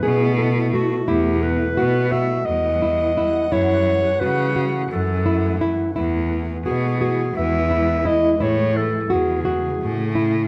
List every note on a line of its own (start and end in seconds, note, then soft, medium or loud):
0.00 1.05 B2 medium
0.00 0.92 B2 medium
0.00 1.06 A3 medium
0.00 1.05 E4 medium
0.00 0.31 G#4 medium
0.00 0.39 B4 loud
0.38 0.67 A4 medium
0.73 1.02 A3 medium
0.73 1.10 F#4 medium
1.07 1.67 E2 medium
1.07 3.50 E3 medium
1.07 3.50 G3 medium
1.07 1.65 E4 medium
1.07 1.44 G4 medium
1.07 5.92 F#5 medium
1.43 2.13 B4 medium
1.77 2.37 B2 medium
1.77 2.06 F#4 medium
2.12 2.70 F#4 medium
2.12 2.47 E5 medium
2.46 3.37 E2 medium
2.46 3.53 D#5 medium
2.82 3.11 E4 medium
3.17 3.46 E4 medium
3.51 4.12 F#2 medium
3.51 5.94 E3 medium
3.51 5.94 A3 medium
3.51 4.09 E4 medium
3.51 4.21 C#5 medium
4.20 4.81 C#3 medium
4.20 4.50 F#4 medium
4.20 4.64 B4 medium
4.56 5.14 F#4 medium
4.90 5.81 F#2 medium
4.90 5.66 A4 medium
5.26 5.55 E4 medium
5.61 5.90 E4 medium
5.95 6.56 E2 medium
5.95 8.38 E3 medium
5.95 8.38 G#3 medium
5.95 6.54 E4 medium
5.95 8.39 E4 medium
6.65 7.26 B2 medium
6.65 6.95 F#4 medium
6.65 6.98 G#4 medium
7.00 7.59 F#4 medium
7.00 7.33 G#4 medium
7.35 8.25 E2 medium
7.35 8.08 E5 medium
7.71 8.00 E4 medium
8.05 8.34 E4 medium
8.05 8.32 D#5 loud
8.32 8.43 D#5 medium
8.40 9.00 A2 medium
8.40 10.48 C#3 medium
8.40 10.48 A3 medium
8.40 8.98 E4 medium
8.40 8.78 C#5 medium
8.40 10.48 G#5 medium
8.77 9.14 A4 medium
9.10 9.70 E2 medium
9.10 9.39 F#4 medium
9.10 10.16 G#4 medium
9.45 10.03 F#4 medium
9.81 10.48 A2 medium
10.15 10.44 E4 medium